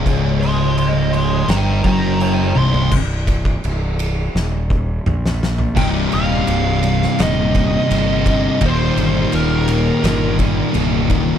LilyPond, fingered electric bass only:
\new Staff \with { instrumentName = "Fingered electric bass" } { \clef bass \time 4/4 \key c \minor \tempo 4 = 84 des,,2 g,,8 fis,,4 c,,8 | c,,4 c,,4 ees,,4 bes,,4 | c,,8 ees,,8 c,,4 ees,,4 g,,4 | ees,,8 g,,8 ees,,4 g,,4 c,,4 | }